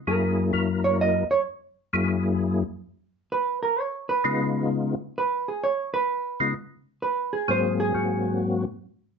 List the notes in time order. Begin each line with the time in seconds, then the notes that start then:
0.07 F#2 F#3 A#3 E4 G#4 A#4
0.53 F#2 F#3 A#3 E4 A#4
0.84 C#5
1.01 D#5
1.31 C#5
1.93 F#2 F#3 A#3 E4 G#4
3.32 B4
3.63 A#4
3.80 C#5
4.09 B4
4.24 C#3 G#3 B3 D#4 F4
5.18 B4
5.48 G#4
5.64 C#5
5.94 B4
6.40 C#3 G#3 B3 D#4 F4
7.02 B4
7.33 G#4
7.48 G#2 F#3 A#3 C4 G#4 C5
7.80 G#4
7.94 G#2 F#3 A#3 C4 F#4